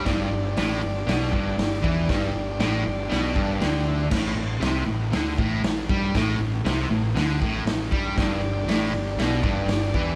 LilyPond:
<<
  \new Staff \with { instrumentName = "Transistor combo organ" } { \time 4/4 \key g \lydian \tempo 4 = 118 << { r1 | r2 r8 a''8 g''8 e''8 | r1 | r1 |
r1 | } \\ { <d' g' d''>1~ | <d' g' d''>1 | r1 | r1 |
<d' g' d''>1 | } >> }
  \new Staff \with { instrumentName = "Distorted electric guitar" } { \clef bass \time 4/4 \key g \lydian g,8 g,8 a,8 g,8 b,8 g,8 g,8 e8 | g,8 g,8 a,8 g,8 b,8 g,8 d4 | a,8 a,8 c8 a,8 d8 a,8 a,8 g8 | a,8 a,8 c8 a,8 d8 a,8 a,8 g8 |
g,8 g,8 a,8 g,8 b,8 g,8 g,8 e8 | }
  \new Staff \with { instrumentName = "Fingered electric bass" } { \clef bass \time 4/4 \key g \lydian g,,8 g,,8 a,,8 g,,8 b,,8 g,,8 g,,8 e,8 | g,,8 g,,8 a,,8 g,,8 b,,8 g,,8 d,4 | a,,8 a,,8 c,8 a,,8 d,8 a,,8 a,,8 g,8 | a,,8 a,,8 c,8 a,,8 d,8 a,,8 a,,8 g,8 |
g,,8 g,,8 a,,8 g,,8 b,,8 g,,8 g,,8 e,8 | }
  \new DrumStaff \with { instrumentName = "Drums" } \drummode { \time 4/4 <hho bd sn>4 <hho sn>4 <hho sn>8 bd8 <hho sn>8 bd8 | <hho bd sn>4 <hho sn>4 <hho sn>8 bd8 <hho sn>4 | <cymc bd sn>4 <hho sn>4 <hho sn>8 bd8 <hho sn>8 bd8 | <hho bd sn>4 <hho sn>4 <hho sn>8 bd8 <hho sn>8 bd8 |
<hho bd sn>4 <hho sn>4 <hho sn>8 bd8 <hho sn>8 bd8 | }
>>